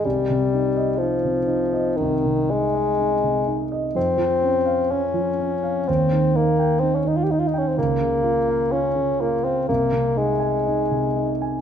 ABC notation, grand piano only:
X:1
M:4/4
L:1/16
Q:1/4=62
K:Ab
V:1 name="Grand piano"
C,, C, E e E C, E e C,, C, E e E C, E e | F,, F, D f D F, D f E,, E, E g E E, E g | D,, D, F f F D, F f C,, C, E a E C, E a |]